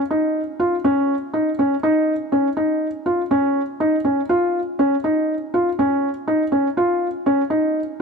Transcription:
0.11 0.40 D#4 medium
0.60 0.74 F4 medium
0.84 1.14 C#4 medium
1.34 1.48 D#4 medium
1.59 1.74 C#4 medium
1.83 2.13 D#4 medium
2.32 2.47 C#4 medium
2.57 2.86 D#4 medium
3.06 3.21 F4 medium
3.31 3.60 C#4 medium
3.80 3.95 D#4 medium
4.05 4.19 C#4 medium
4.29 4.59 F4 medium
4.79 4.94 C#4 medium
5.04 5.33 D#4 medium
5.54 5.68 F4 medium
5.79 6.08 C#4 medium
6.28 6.42 D#4 medium
6.52 6.67 C#4 medium
6.77 7.06 F4 medium
7.26 7.41 C#4 medium
7.50 7.79 D#4 medium

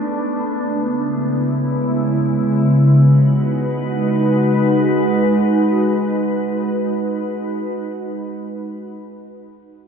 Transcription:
0.00 0.58 A3 medium
0.00 2.65 B3 medium
0.00 0.58 D4 medium
0.60 2.67 C#3 medium
0.60 2.67 G#3 medium
0.60 2.67 E4 medium
2.68 7.62 G#3 medium
2.68 7.62 D#4 medium
2.68 7.62 F#4 medium
2.68 7.62 B4 medium

